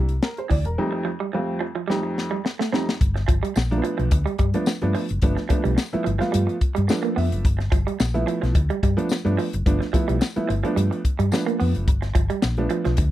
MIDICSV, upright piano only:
0, 0, Header, 1, 2, 480
1, 0, Start_track
1, 0, Tempo, 555042
1, 679, Time_signature, 4, 2, 24, 8
1, 11340, End_track
2, 0, Start_track
2, 0, Title_t, "Upright piano"
2, 0, Program_c, 0, 0
2, 201, Note_on_c, 0, 70, 64
2, 321, Note_off_c, 0, 70, 0
2, 331, Note_on_c, 0, 72, 63
2, 436, Note_off_c, 0, 72, 0
2, 442, Note_on_c, 0, 74, 69
2, 561, Note_off_c, 0, 74, 0
2, 566, Note_on_c, 0, 70, 61
2, 676, Note_on_c, 0, 41, 97
2, 677, Note_on_c, 0, 60, 86
2, 677, Note_on_c, 0, 63, 98
2, 678, Note_on_c, 0, 55, 92
2, 678, Note_on_c, 0, 57, 80
2, 794, Note_off_c, 0, 70, 0
2, 916, Note_off_c, 0, 41, 0
2, 917, Note_off_c, 0, 55, 0
2, 917, Note_off_c, 0, 57, 0
2, 917, Note_off_c, 0, 60, 0
2, 917, Note_off_c, 0, 63, 0
2, 1160, Note_on_c, 0, 55, 82
2, 1160, Note_on_c, 0, 57, 82
2, 1162, Note_on_c, 0, 41, 86
2, 1162, Note_on_c, 0, 60, 88
2, 1162, Note_on_c, 0, 65, 91
2, 1399, Note_off_c, 0, 41, 0
2, 1399, Note_off_c, 0, 55, 0
2, 1399, Note_off_c, 0, 57, 0
2, 1400, Note_off_c, 0, 60, 0
2, 1400, Note_off_c, 0, 65, 0
2, 1637, Note_on_c, 0, 57, 87
2, 1639, Note_on_c, 0, 41, 96
2, 1639, Note_on_c, 0, 55, 81
2, 1640, Note_on_c, 0, 63, 100
2, 1641, Note_on_c, 0, 60, 80
2, 2004, Note_off_c, 0, 41, 0
2, 2004, Note_off_c, 0, 57, 0
2, 2005, Note_off_c, 0, 55, 0
2, 2005, Note_off_c, 0, 60, 0
2, 2005, Note_off_c, 0, 63, 0
2, 2359, Note_on_c, 0, 41, 81
2, 2361, Note_on_c, 0, 57, 75
2, 2362, Note_on_c, 0, 55, 75
2, 2363, Note_on_c, 0, 60, 71
2, 2364, Note_on_c, 0, 63, 102
2, 2486, Note_off_c, 0, 41, 0
2, 2487, Note_off_c, 0, 57, 0
2, 2488, Note_off_c, 0, 55, 0
2, 2488, Note_off_c, 0, 60, 0
2, 2488, Note_off_c, 0, 63, 0
2, 3209, Note_on_c, 0, 57, 81
2, 3209, Note_on_c, 0, 62, 107
2, 3210, Note_on_c, 0, 58, 75
2, 3212, Note_on_c, 0, 53, 87
2, 3261, Note_off_c, 0, 58, 0
2, 3267, Note_on_c, 0, 59, 81
2, 3559, Note_off_c, 0, 57, 0
2, 3559, Note_off_c, 0, 62, 0
2, 3560, Note_off_c, 0, 53, 0
2, 3588, Note_off_c, 0, 59, 0
2, 3928, Note_on_c, 0, 53, 101
2, 3929, Note_on_c, 0, 59, 88
2, 3930, Note_on_c, 0, 57, 89
2, 3930, Note_on_c, 0, 62, 103
2, 4040, Note_off_c, 0, 53, 0
2, 4040, Note_off_c, 0, 59, 0
2, 4041, Note_off_c, 0, 57, 0
2, 4041, Note_off_c, 0, 62, 0
2, 4166, Note_on_c, 0, 53, 100
2, 4166, Note_on_c, 0, 57, 86
2, 4168, Note_on_c, 0, 59, 84
2, 4168, Note_on_c, 0, 62, 100
2, 4342, Note_off_c, 0, 53, 0
2, 4342, Note_off_c, 0, 57, 0
2, 4343, Note_off_c, 0, 59, 0
2, 4343, Note_off_c, 0, 62, 0
2, 4519, Note_on_c, 0, 53, 96
2, 4521, Note_on_c, 0, 57, 94
2, 4521, Note_on_c, 0, 62, 107
2, 4523, Note_on_c, 0, 59, 91
2, 4646, Note_off_c, 0, 53, 0
2, 4647, Note_off_c, 0, 57, 0
2, 4647, Note_off_c, 0, 62, 0
2, 4648, Note_off_c, 0, 59, 0
2, 4755, Note_on_c, 0, 53, 91
2, 4758, Note_on_c, 0, 59, 83
2, 4759, Note_on_c, 0, 57, 89
2, 4760, Note_on_c, 0, 62, 96
2, 4940, Note_off_c, 0, 53, 0
2, 4941, Note_off_c, 0, 59, 0
2, 4942, Note_off_c, 0, 57, 0
2, 4942, Note_off_c, 0, 62, 0
2, 5127, Note_on_c, 0, 57, 86
2, 5128, Note_on_c, 0, 53, 99
2, 5128, Note_on_c, 0, 64, 97
2, 5131, Note_on_c, 0, 59, 83
2, 5239, Note_off_c, 0, 53, 0
2, 5239, Note_off_c, 0, 57, 0
2, 5239, Note_off_c, 0, 64, 0
2, 5241, Note_off_c, 0, 59, 0
2, 5366, Note_on_c, 0, 57, 93
2, 5367, Note_on_c, 0, 53, 93
2, 5367, Note_on_c, 0, 59, 87
2, 5367, Note_on_c, 0, 65, 116
2, 5661, Note_off_c, 0, 53, 0
2, 5661, Note_off_c, 0, 57, 0
2, 5661, Note_off_c, 0, 59, 0
2, 5661, Note_off_c, 0, 65, 0
2, 5959, Note_on_c, 0, 57, 73
2, 5960, Note_on_c, 0, 53, 96
2, 5963, Note_on_c, 0, 59, 80
2, 5963, Note_on_c, 0, 69, 72
2, 5964, Note_on_c, 0, 62, 103
2, 6184, Note_off_c, 0, 69, 0
2, 6199, Note_on_c, 0, 76, 80
2, 6422, Note_off_c, 0, 76, 0
2, 6435, Note_off_c, 0, 57, 0
2, 6436, Note_off_c, 0, 53, 0
2, 6438, Note_off_c, 0, 59, 0
2, 6438, Note_off_c, 0, 62, 0
2, 7040, Note_on_c, 0, 53, 89
2, 7040, Note_on_c, 0, 59, 84
2, 7042, Note_on_c, 0, 64, 102
2, 7043, Note_on_c, 0, 57, 89
2, 7392, Note_off_c, 0, 59, 0
2, 7393, Note_off_c, 0, 53, 0
2, 7394, Note_off_c, 0, 57, 0
2, 7394, Note_off_c, 0, 64, 0
2, 7755, Note_on_c, 0, 53, 109
2, 7757, Note_on_c, 0, 57, 90
2, 7758, Note_on_c, 0, 59, 94
2, 7760, Note_on_c, 0, 62, 104
2, 7872, Note_off_c, 0, 53, 0
2, 7872, Note_off_c, 0, 57, 0
2, 7873, Note_off_c, 0, 59, 0
2, 7874, Note_off_c, 0, 62, 0
2, 7996, Note_on_c, 0, 53, 94
2, 7997, Note_on_c, 0, 57, 87
2, 7998, Note_on_c, 0, 59, 87
2, 7999, Note_on_c, 0, 62, 109
2, 8175, Note_off_c, 0, 53, 0
2, 8176, Note_off_c, 0, 57, 0
2, 8176, Note_off_c, 0, 59, 0
2, 8176, Note_off_c, 0, 62, 0
2, 8353, Note_on_c, 0, 57, 83
2, 8355, Note_on_c, 0, 59, 78
2, 8356, Note_on_c, 0, 53, 99
2, 8359, Note_on_c, 0, 62, 107
2, 8481, Note_off_c, 0, 57, 0
2, 8482, Note_off_c, 0, 59, 0
2, 8483, Note_off_c, 0, 53, 0
2, 8484, Note_off_c, 0, 62, 0
2, 8594, Note_on_c, 0, 53, 95
2, 8595, Note_on_c, 0, 57, 88
2, 8597, Note_on_c, 0, 64, 96
2, 8598, Note_on_c, 0, 59, 82
2, 8778, Note_off_c, 0, 53, 0
2, 8778, Note_off_c, 0, 57, 0
2, 8779, Note_off_c, 0, 59, 0
2, 8779, Note_off_c, 0, 64, 0
2, 8960, Note_on_c, 0, 57, 86
2, 8960, Note_on_c, 0, 59, 87
2, 8963, Note_on_c, 0, 53, 81
2, 8964, Note_on_c, 0, 64, 97
2, 9073, Note_off_c, 0, 57, 0
2, 9073, Note_off_c, 0, 59, 0
2, 9075, Note_off_c, 0, 53, 0
2, 9076, Note_off_c, 0, 64, 0
2, 9203, Note_on_c, 0, 59, 84
2, 9205, Note_on_c, 0, 53, 97
2, 9205, Note_on_c, 0, 57, 89
2, 9207, Note_on_c, 0, 62, 106
2, 9497, Note_off_c, 0, 59, 0
2, 9498, Note_off_c, 0, 53, 0
2, 9498, Note_off_c, 0, 57, 0
2, 9499, Note_off_c, 0, 62, 0
2, 9791, Note_on_c, 0, 53, 92
2, 9791, Note_on_c, 0, 57, 72
2, 9794, Note_on_c, 0, 59, 76
2, 9794, Note_on_c, 0, 62, 95
2, 10269, Note_off_c, 0, 53, 0
2, 10269, Note_off_c, 0, 57, 0
2, 10271, Note_off_c, 0, 59, 0
2, 10271, Note_off_c, 0, 62, 0
2, 10876, Note_on_c, 0, 53, 97
2, 10878, Note_on_c, 0, 57, 77
2, 10879, Note_on_c, 0, 59, 79
2, 10881, Note_on_c, 0, 62, 98
2, 11229, Note_off_c, 0, 53, 0
2, 11230, Note_off_c, 0, 57, 0
2, 11230, Note_off_c, 0, 59, 0
2, 11231, Note_off_c, 0, 62, 0
2, 11340, End_track
0, 0, End_of_file